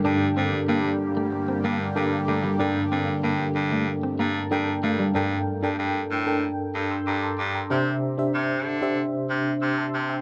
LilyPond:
<<
  \new Staff \with { instrumentName = "FM electric piano" } { \time 4/4 \key g \minor \tempo 4 = 94 << { r1 | r2 r8 bes''16 a''16 g''8 f''8 | \key g \dorian r2 r8 <e''' g'''>16 <c''' e'''>16 <bes'' d'''>16 <a'' c'''>16 <bes'' d'''>16 <g'' bes''>16~ | <g'' bes''>16 r2 r8. <c''' e'''>16 <a'' c'''>8 <e'' g''>16 | } \\ { <d' a' bes' g''>4.~ <d' a' bes' g''>16 r4 r16 <d' a' bes' g''>8. r16 | <d' a' bes' g''>4.~ <d' a' bes' g''>16 r4 r16 <d' a' bes' g''>8. r16 | <d' a' bes' g''>8. <d' a' bes' g''>8. r16 <d' a' bes' g''>4.~ <d' a' bes' g''>16 r8 | <d' g' c'' e''>8. <d' g' c'' e''>8. r16 <d' g' c'' e''>4.~ <d' g' c'' e''>16 r8 | } >> }
  \new Staff \with { instrumentName = "FM electric piano" } { \clef bass \time 4/4 \key g \minor g,4. r2 r8 | g,4. r2 r8 | \key g \dorian g,4. r2 r8 | c4. r2 r8 | }
  \new Staff \with { instrumentName = "Clean electric guitar" } { \time 4/4 \key g \minor d'16 r16 c'16 r16 bes16 r8 a16 r16 c'16 bes16 r8. a16 g16 | d'16 r16 c'16 r16 bes16 r8 a16 r16 c'16 bes16 r8. a16 g16 | \key g \dorian r1 | r1 | }
  \new Staff \with { instrumentName = "Analog synth pad" } { \clef bass \time 4/4 \key g \minor <d g bes g'>1~ | <d g bes g'>1 | \key g \dorian r1 | r1 | }
  \new Staff \with { instrumentName = "Baritone saxophone" } { \clef bass \time 4/4 \key g \minor g,8 g,8 g,8 r4 g,8 g,8 g,8 | g,8 g,8 g,8 g,8. r16 g,8 g,8 g,8 | \key g \dorian g,8 r16 g,16 g,8 a,8. r16 g,8 g,8 g,8 | c8 r8 c8 d8. r16 c8 c8 c8 | }
>>